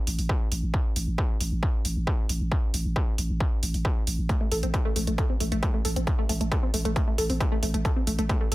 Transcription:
0.07 0.18 A1 loud
0.07 open hi-hat loud
0.19 0.29 A1 medium
0.19 open hi-hat medium
0.29 kick loud
0.51 0.62 A1 loud
0.51 open hi-hat loud
0.63 0.74 A1 medium
0.74 kick loud
0.96 1.07 A1 loud
0.96 open hi-hat loud
1.07 1.18 A1 medium
1.18 kick loud
1.40 1.51 A1 loud
1.40 open hi-hat loud
1.52 1.62 A1 medium
1.63 kick loud
1.85 1.96 A1 loud
1.85 open hi-hat loud
1.96 2.07 A1 medium
2.07 kick loud
2.29 2.40 A1 loud
2.29 open hi-hat loud
2.41 2.51 A1 medium
2.52 kick loud
2.74 2.85 A1 loud
2.74 open hi-hat loud
2.85 2.96 A1 medium
2.96 kick loud
3.18 3.29 A1 loud
3.18 open hi-hat loud
3.30 3.40 A1 medium
3.40 kick loud
3.63 3.74 A1 loud
3.63 open hi-hat loud
3.74 3.85 A1 medium
3.74 open hi-hat medium
3.85 kick loud
4.07 4.18 A1 loud
4.07 open hi-hat loud
4.18 4.29 A1 medium
4.29 4.37 A3 medium
4.29 kick loud
4.29 closed hi-hat medium
4.41 4.46 A3 medium
4.51 4.62 A1 loud
4.51 4.57 A4 medium
4.51 open hi-hat loud
4.63 4.74 A1 medium
4.63 4.66 C4 medium
4.63 closed hi-hat medium
4.74 4.77 A3 medium
4.74 kick loud
4.74 closed hi-hat medium
4.85 4.90 A3 loud
4.96 5.07 A1 loud
4.96 5.04 A3 medium
4.96 open hi-hat loud
5.07 5.18 A1 medium
5.07 5.13 A3 medium
5.07 closed hi-hat medium
5.18 5.24 A4 medium
5.18 kick loud
5.18 closed hi-hat medium
5.30 5.33 C4 medium
5.40 5.51 A1 loud
5.40 5.44 A3 medium
5.40 open hi-hat loud
5.52 5.62 A1 medium
5.52 5.57 A3 loud
5.52 closed hi-hat medium
5.63 5.71 A3 medium
5.63 kick loud
5.63 closed hi-hat medium
5.74 5.79 A3 medium
5.85 5.96 A1 loud
5.85 5.90 A4 medium
5.85 open hi-hat loud
5.96 6.07 A1 medium
5.96 5.99 C4 medium
5.96 closed hi-hat medium
6.07 6.10 A3 medium
6.07 kick loud
6.07 closed hi-hat medium
6.19 6.24 A3 loud
6.29 6.40 A1 loud
6.29 6.37 A3 medium
6.29 open hi-hat loud
6.41 6.51 A1 medium
6.41 6.46 A3 medium
6.41 closed hi-hat medium
6.52 6.57 A4 medium
6.52 kick loud
6.52 closed hi-hat medium
6.63 6.66 C4 medium
6.74 6.85 A1 loud
6.74 6.77 A3 medium
6.74 open hi-hat loud
6.85 6.96 A1 medium
6.85 6.90 A3 loud
6.85 closed hi-hat medium
6.96 7.04 A3 medium
6.96 kick loud
6.96 closed hi-hat medium
7.07 7.13 A3 medium
7.18 7.29 A1 loud
7.18 7.24 A4 medium
7.18 open hi-hat loud
7.30 7.40 A1 medium
7.30 7.33 C4 medium
7.30 open hi-hat medium
7.40 7.44 A3 medium
7.40 kick loud
7.40 closed hi-hat medium
7.52 7.57 A3 loud
7.63 7.73 A1 loud
7.63 7.71 A3 medium
7.63 open hi-hat loud
7.74 7.85 A1 medium
7.74 7.79 A3 medium
7.74 closed hi-hat medium
7.85 7.90 A4 medium
7.85 kick loud
7.85 closed hi-hat medium
7.96 7.99 C4 medium
8.07 8.18 A1 loud
8.07 8.10 A3 medium
8.07 open hi-hat loud
8.19 8.29 A1 medium
8.19 8.24 A3 loud
8.19 closed hi-hat medium
8.29 8.38 A3 medium
8.29 kick loud
8.29 closed hi-hat medium
8.41 8.46 A3 medium
8.52 8.55 A1 loud
8.52 8.55 A4 medium
8.52 open hi-hat loud

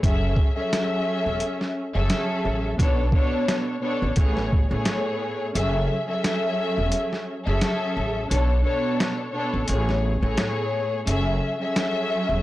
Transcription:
0.03 0.34 F#1 loud
0.03 0.52 F#3 medium
0.03 0.52 C#4 medium
0.03 0.52 G#4 medium
0.03 0.53 A4 medium
0.03 0.53 E5 loud
0.03 kick loud
0.03 closed hi-hat medium
0.36 kick loud
0.56 1.82 F#3 loud
0.56 1.82 C#4 medium
0.56 1.83 G#4 medium
0.56 1.83 A4 medium
0.56 1.83 E5 loud
0.73 snare loud
0.73 closed hi-hat medium
1.26 1.40 E1 medium
1.40 closed hi-hat medium
1.61 snare soft
1.94 2.09 F#1 medium
1.94 2.73 F#3 loud
1.94 2.73 C#4 medium
1.94 2.73 G#4 medium
1.94 2.73 A4 medium
1.94 2.74 E5 loud
2.10 snare medium
2.10 closed hi-hat medium
2.45 2.76 A1 medium
2.78 3.10 B1 loud
2.78 3.11 B2 medium
2.78 3.11 B3 medium
2.78 3.11 D4 medium
2.78 3.11 A4 medium
2.78 3.11 C#5 loud
2.78 kick loud
2.78 closed hi-hat medium
3.12 3.77 B2 loud
3.12 3.77 B3 medium
3.12 3.77 D4 medium
3.12 3.78 A4 medium
3.12 3.78 C#5 loud
3.12 kick loud
3.48 snare loud
3.48 closed hi-hat medium
3.81 4.16 B2 medium
3.81 4.16 B3 medium
3.81 4.17 D4 medium
3.81 4.17 A4 medium
3.81 4.17 C#5 loud
4.02 4.16 A1 medium
4.16 4.65 A1 loud
4.16 4.66 A2 medium
4.16 4.66 A3 medium
4.16 4.66 B3 medium
4.16 4.66 G#4 medium
4.16 4.67 C#5 loud
4.16 kick medium
4.16 closed hi-hat medium
4.37 snare soft
4.53 kick medium
4.69 4.85 A1 loud
4.69 5.48 A2 loud
4.69 5.48 A3 medium
4.69 5.49 B3 medium
4.69 5.49 G#4 medium
4.69 5.49 C#5 loud
4.85 snare loud
4.85 closed hi-hat medium
5.54 5.86 F#1 loud
5.54 6.04 F#3 loud
5.54 6.04 C#4 medium
5.54 6.04 G#4 medium
5.54 6.04 A4 medium
5.54 6.04 E5 loud
5.54 closed hi-hat medium
6.08 7.34 F#3 loud
6.08 7.34 C#4 medium
6.08 7.34 G#4 medium
6.08 7.35 A4 medium
6.08 7.35 E5 loud
6.24 snare loud
6.24 closed hi-hat medium
6.78 6.91 E1 medium
6.92 closed hi-hat medium
7.13 snare soft
7.46 7.60 F#1 medium
7.46 8.24 F#3 medium
7.46 8.25 C#4 medium
7.46 8.25 G#4 medium
7.46 8.25 A4 medium
7.46 8.25 E5 loud
7.61 snare medium
7.61 closed hi-hat medium
7.97 8.28 A1 medium
8.29 8.62 B1 loud
8.29 8.62 B2 medium
8.29 8.62 B3 medium
8.29 8.62 D4 medium
8.29 8.63 A4 medium
8.29 8.63 C#5 loud
8.29 closed hi-hat medium
8.64 9.28 B2 loud
8.64 9.29 B3 medium
8.64 9.29 D4 medium
8.64 9.29 A4 medium
8.64 9.29 C#5 loud
9.00 snare loud
9.00 closed hi-hat medium
9.33 9.68 B2 medium
9.33 9.68 B3 medium
9.33 9.69 D4 medium
9.33 9.69 A4 medium
9.33 9.69 C#5 loud
9.54 9.67 A1 medium
9.68 10.17 A1 loud
9.68 10.17 A2 loud
9.68 10.18 A3 medium
9.68 10.18 B3 medium
9.68 10.18 G#4 medium
9.68 10.18 C#5 loud
9.68 closed hi-hat medium
9.89 snare soft
10.21 10.36 A1 loud
10.21 11.00 A2 loud
10.21 11.00 A3 medium
10.21 11.00 B3 medium
10.21 11.01 G#4 loud
10.21 11.01 C#5 loud
10.37 snare medium
10.37 closed hi-hat medium
11.06 11.38 F#1 loud
11.06 11.55 F#3 loud
11.06 11.55 C#4 medium
11.06 11.56 G#4 medium
11.06 11.56 A4 medium
11.06 11.56 E5 loud
11.06 closed hi-hat medium
11.60 12.42 F#3 loud
11.60 12.42 C#4 medium
11.60 12.42 G#4 medium
11.60 12.42 A4 medium
11.60 12.42 E5 loud
11.76 snare loud
11.76 closed hi-hat medium
12.29 12.42 E1 medium

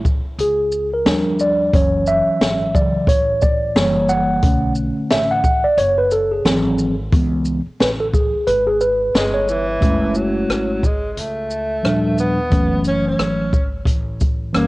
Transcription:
0.00 0.22 A1 medium
0.05 kick medium
0.05 shaker medium
0.25 muted upright bass stroke soft
0.39 1.02 C#2 loud
0.39 0.89 G#4 medium
0.39 closed hi-hat loud
0.72 shaker soft
0.94 1.42 A#4 medium
1.05 1.70 D#2 medium
1.05 1.70 F3 medium
1.05 1.70 G3 medium
1.05 1.70 D4 medium
1.05 snare loud
1.05 closed hi-hat medium
1.40 1.75 D5 medium
1.40 shaker medium
1.73 2.24 F#1 loud
1.73 2.70 E3 soft
1.73 2.71 F#3 soft
1.73 2.71 C#4 medium
1.73 2.09 C#5 medium
1.73 kick loud
1.73 closed hi-hat medium
2.07 2.77 E5 loud
2.07 shaker medium
2.27 muted upright bass stroke medium
2.41 2.91 G#1 medium
2.41 snare loud
2.41 closed hi-hat medium
2.74 3.05 C#3 soft
2.74 3.05 E3 soft
2.74 3.05 F#3 soft
2.74 3.06 D5 medium
2.74 kick medium
2.74 shaker soft
2.94 muted upright bass stroke soft
3.07 3.71 A1 loud
3.07 3.43 C#5 loud
3.07 kick loud
3.07 closed hi-hat loud
3.42 3.77 D5 loud
3.42 kick medium
3.42 shaker soft
3.75 4.40 F#1 loud
3.75 4.39 E3 medium
3.75 4.40 G3 medium
3.75 4.40 A#3 medium
3.75 4.10 C#5 loud
3.75 snare loud
3.75 closed hi-hat medium
4.09 4.73 F#5 loud
4.09 shaker medium
4.42 4.94 B1 loud
4.42 5.40 D3 medium
4.42 5.40 A3 medium
4.42 5.40 C#4 medium
4.42 kick loud
4.42 closed hi-hat medium
4.75 shaker medium
4.97 muted upright bass stroke soft
5.10 5.61 A1 medium
5.10 5.31 E5 loud
5.10 snare loud
5.10 closed hi-hat medium
5.31 5.43 F#5 loud
5.44 5.65 F#5 medium
5.44 kick medium
5.44 shaker soft
5.64 5.78 D5 medium
5.64 muted upright bass stroke medium
5.77 6.42 F#1 loud
5.77 5.98 C#5 loud
5.77 closed hi-hat medium
5.98 6.12 B4 medium
6.11 6.32 A4 medium
6.11 closed hi-hat soft
6.11 shaker soft
6.31 6.95 G#4 medium
6.45 7.09 G#1 loud
6.45 6.92 E3 medium
6.45 6.92 F#3 medium
6.45 6.93 C4 medium
6.45 snare loud
6.45 closed hi-hat medium
6.79 shaker medium
7.12 7.63 C#2 loud
7.12 7.59 E3 medium
7.12 7.60 G#3 medium
7.12 7.60 B3 medium
7.12 kick loud
7.12 closed hi-hat medium
7.45 shaker medium
7.66 muted upright bass stroke medium
7.80 8.31 A1 medium
7.80 7.90 B4 medium
7.80 snare loud
7.80 closed hi-hat medium
8.00 8.06 A4 medium
8.14 8.49 G#4 medium
8.14 kick medium
8.14 shaker medium
8.33 muted upright bass stroke medium
8.47 9.11 G#1 loud
8.47 8.68 B4 loud
8.47 closed hi-hat loud
8.67 8.81 G#4 medium
8.81 9.31 B4 loud
8.81 shaker soft
9.14 9.79 G1 loud
9.14 9.47 G#3 medium
9.14 snare loud
9.14 closed hi-hat medium
9.34 9.66 C#5 loud
9.48 10.18 E3 loud
9.48 shaker medium
9.81 10.46 F#1 medium
9.81 10.82 G#3 medium
9.81 10.82 A3 medium
9.81 10.83 C#4 medium
9.81 10.83 E4 medium
9.81 kick loud
9.81 closed hi-hat medium
10.15 10.87 F#3 medium
10.15 shaker soft
10.50 11.14 G#1 medium
10.50 cross-stick loud
10.50 closed hi-hat medium
10.83 11.13 G#3 medium
10.83 kick medium
10.83 shaker soft
11.13 11.20 G#3 medium
11.17 11.81 C#2 medium
11.17 12.19 A3 medium
11.17 closed hi-hat medium
11.51 shaker soft
11.83 12.49 D#2 medium
11.83 12.38 A#2 medium
11.83 12.37 F3 medium
11.83 12.37 G3 medium
11.83 12.38 D4 medium
11.83 cross-stick loud
11.83 closed hi-hat medium
12.18 12.82 B3 loud
12.18 shaker soft
12.50 13.16 F#1 medium
12.50 13.51 E3 medium
12.50 13.52 F#3 medium
12.50 13.52 A3 medium
12.50 13.53 C#4 medium
12.50 kick loud
12.50 closed hi-hat medium
12.84 13.05 C#4 loud
12.84 closed hi-hat soft
12.84 shaker soft
13.08 13.70 C#4 medium
13.19 13.83 G#1 medium
13.19 cross-stick loud
13.19 closed hi-hat medium
13.53 kick medium
13.53 shaker soft
13.86 14.50 A1 loud
13.86 kick medium
13.86 closed hi-hat medium
14.21 kick medium
14.21 closed hi-hat soft
14.21 shaker soft
14.53 14.67 F#1 medium
14.53 14.67 E3 medium
14.53 14.67 G3 medium
14.53 14.67 A#3 medium
14.53 14.67 C#4 medium
14.53 cross-stick loud
14.53 closed hi-hat medium

